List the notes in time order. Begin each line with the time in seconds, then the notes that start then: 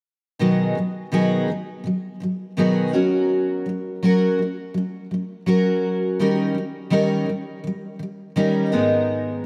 0.39 B2 D#3 F#3 B3 D#4 G#4
0.75 B2 D#3 F#3
1.12 B2 D#3 F#3 B3 D#4 G#4
1.48 B2 D#3 F#3
1.84 B2 D#3 F#3
2.20 B2 D#3 F#3
2.57 B2 D#3 F#3 B3 D#4 G#4
2.93 F#3 C#4 F#4 A#4
3.66 F#3 C#4
4.03 F#3 C#4 F#4 A#4
4.39 F#3 C#4
4.74 F#3 C#4
5.11 F#3 C#4
5.46 F#3 C#4 F#4 A#4
6.19 D#3 G3 C#4 D#4 A#4
6.54 D#3 G3
6.90 D#3 G3 C#4 D#4 A#4
7.26 D#3 G3
7.64 D#3 G3
7.99 D#3 G3
8.36 D#3 G3 C#4 D#4 A#4
8.72 G#2 D#3 G#3 B3 D#4 A#4